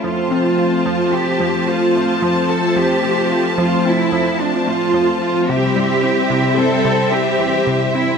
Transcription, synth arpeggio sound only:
X:1
M:5/4
L:1/8
Q:1/4=110
K:F
V:1 name="Synth arpeggio sound" clef=bass
F, C F F, C F, F A, F, F | F, C F F, C F, F A, F, F | C, G, C C, G, C, C E, C, C |]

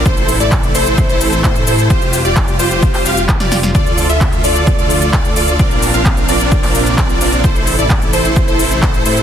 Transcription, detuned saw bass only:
X:1
M:4/4
L:1/16
Q:1/4=130
K:Aphr
V:1 name="Detuned saw bass" clef=bass
A,,,3 A,,,3 A,,,3 A,,,3 A,,2 A,,2 | F,,,3 F,,,3 F,,,3 F,,, F,,,3 F,,,3 | D,,3 D,,3 D,,3 D,,3 D,,2 D,,2 | B,,,3 B,,,3 B,,,3 B,,,3 B,,,2 B,,,2 |
A,,,3 A,,,3 A,,,3 A,,,3 A,,,2 A,,2 |]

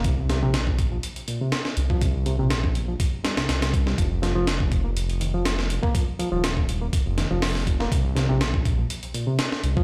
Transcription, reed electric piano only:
X:1
M:4/4
L:1/16
Q:"Swing 16ths" 1/4=122
K:Cphr
V:1 name="Reed electric piano" clef=bass
C, z C, C, z3 F, z2 B,, C, z3 F, | C, z C, C, z3 F, z2 G, C, z C, z G, | F, z F, F, z3 B, z2 E, F, z3 B, | F, z F, F, z3 B, z2 E, F, z3 B, |
C, z C, C, z3 F, z2 B,, C, z3 F, |]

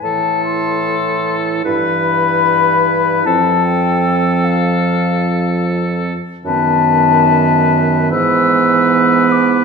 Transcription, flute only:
X:1
M:4/4
L:1/8
Q:1/4=75
K:Flyd
V:1 name="Flute"
a c'2 z b4 | a g2 f3 z2 | a4 e'3 d' |]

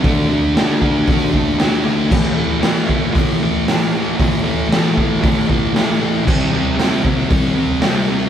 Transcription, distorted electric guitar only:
X:1
M:4/4
L:1/8
Q:1/4=115
K:Dlyd
V:1 name="Distorted electric guitar" clef=bass
[D,A,D] [A,D] [D,A,D] [A,D] [D,A,D] [D,A,D] [D,A,D] [A,D] | [A,,E,A,] [E,A,] [A,,E,A,] [E,A,] [A,,E,A,] [A,,E,A,] [A,,E,A,] [E,A,] | [A,,E,A,] [E,A,] [A,,E,A,] [E,A,] [A,,E,A,] [A,,E,A,] [A,,E,A,] [E,A,] | [=C,=G,=C] [G,C] [C,G,C] [G,C] [C,G,C] [C,G,C] [C,G,C] [G,C] |]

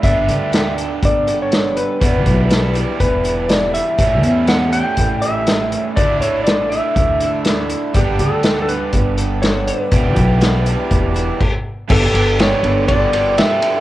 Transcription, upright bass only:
X:1
M:4/4
L:1/8
Q:1/4=121
K:Glyd
V:1 name="Upright bass" clef=bass
G,,, D,,3 G,,,4 | E,,, B,,,3 E,,,4 | A,,, E,,3 A,,,4 | D,, A,,,3 D,,4 |
G,,, D,,3 G,,,4 | E,,, B,,,3 E,,,2 z2 | G,,, G,,,2 G,,,4 z |]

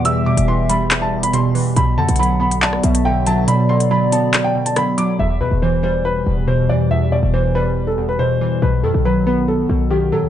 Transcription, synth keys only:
X:1
M:4/4
L:1/8
Q:1/4=140
K:Em
V:1 name="Synth keys" clef=bass
[E,,B,,E,] B,, E, G,2 E,, B,, E, | B,, D, F, B,2 B,, D, F, | B,, D, F, B,2 B,, D, F, | E,, B,, E, G,2 E,, B,, E, |
E,, B,, E, G,2 E,, B,, E, | B,, ^D, F, B,2 B,, D, F, |]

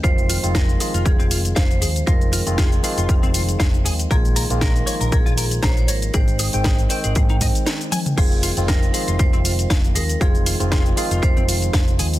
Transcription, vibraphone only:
X:1
M:4/4
L:1/16
Q:"Swing 16ths" 1/4=118
K:Fm
V:1 name="Vibraphone"
c4 B4 A4 c4 | B4 A8 z4 | A4 B4 A4 c/2 d/2 c B2 | c12 z4 |
A4 B4 c4 z2 B2 | A6 z2 c6 z2 |]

